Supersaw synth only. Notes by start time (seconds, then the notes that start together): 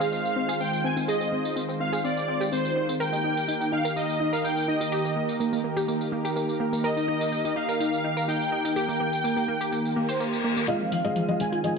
Already playing: F5
0.12 F5
0.60 G5
0.84 G#5
1.08 D#5
1.80 F5
2.04 D5
2.52 C5
3.00 G5
3.72 F5
3.96 D#5
4.33 F5
4.44 G5
4.68 D#5
6.84 D#5
7.56 F5
7.80 F5
8.28 G5
8.76 G5
10.68 F5
11.40 G#5
11.64 G#5